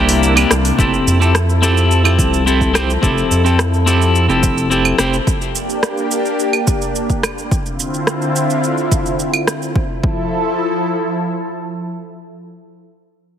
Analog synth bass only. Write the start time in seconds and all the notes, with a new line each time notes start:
Already playing: C2
0.51 C2
0.79 F1
1.07 F2
2.19 C2
3.03 F1
3.31 F2
4.29 F1
4.99 F1